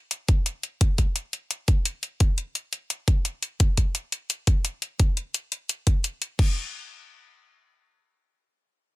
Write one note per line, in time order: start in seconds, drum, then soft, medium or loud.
0.11 closed hi-hat medium
0.28 kick loud
0.28 closed hi-hat medium
0.46 closed hi-hat medium
0.63 closed hi-hat medium
0.81 kick loud
0.81 closed hi-hat medium
0.98 kick medium
0.98 closed hi-hat medium
1.16 closed hi-hat medium
1.33 closed hi-hat medium
1.51 closed hi-hat medium
1.68 kick medium
1.68 closed hi-hat medium
1.85 closed hi-hat medium
2.03 closed hi-hat medium
2.20 kick loud
2.20 closed hi-hat medium
2.38 closed hi-hat medium
2.55 closed hi-hat medium
2.73 closed hi-hat medium
2.90 closed hi-hat medium
3.08 kick medium
3.08 closed hi-hat medium
3.25 closed hi-hat medium
3.42 closed hi-hat medium
3.60 kick loud
3.60 closed hi-hat medium
3.77 kick medium
3.77 closed hi-hat medium
3.95 closed hi-hat medium
4.12 closed hi-hat medium
4.30 closed hi-hat medium
4.47 kick loud
4.47 closed hi-hat medium
4.65 closed hi-hat medium
4.82 closed hi-hat medium
5.00 kick loud
5.00 closed hi-hat medium
5.17 closed hi-hat medium
5.34 closed hi-hat medium
5.52 closed hi-hat medium
5.69 closed hi-hat medium
5.87 kick medium
5.87 closed hi-hat medium
6.04 closed hi-hat medium
6.22 closed hi-hat medium
6.39 kick loud
6.39 crash medium